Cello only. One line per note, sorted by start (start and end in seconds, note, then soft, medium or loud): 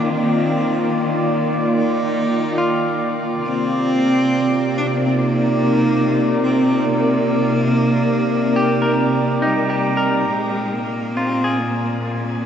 0.07 0.92 C4 medium
0.90 1.78 A#3 medium
1.76 3.01 D#4 medium
3.44 4.79 C4 loud
4.78 4.89 D4 medium
4.87 4.98 C4 medium
4.96 5.07 A#3 medium
5.05 5.16 C4 medium
5.14 6.42 A#3 loud
6.43 6.86 C4 medium
6.84 9.42 A#3 loud
9.45 10.32 G3 medium
10.30 10.74 G#3 medium
10.72 11.17 A#3 medium
11.16 11.60 C4 medium
11.59 12.01 A#3 medium
12.01 12.46 A#3 medium